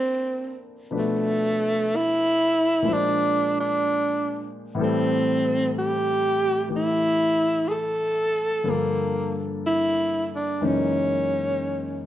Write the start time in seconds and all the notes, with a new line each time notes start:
Already playing: A#2 F3 A#3 C4 D4 E4 A4 A#4
0.91 B2 F3 A3 D4 B4
0.98 A3
1.96 E4
2.82 A#2 F3 G#3
2.87 D4 C5
2.93 D4
3.60 D4
4.75 A2 E3 G3
4.80 C4 A4
5.78 G4
6.69 E3 A3 G4
6.76 E4
7.68 G#4 A4
8.64 G2 D3 F3 A#3 A4
8.70 A#3
9.67 E4
10.35 D4
10.61 F#2 C#3 E3 G#3 A#3 D#4
10.65 C#4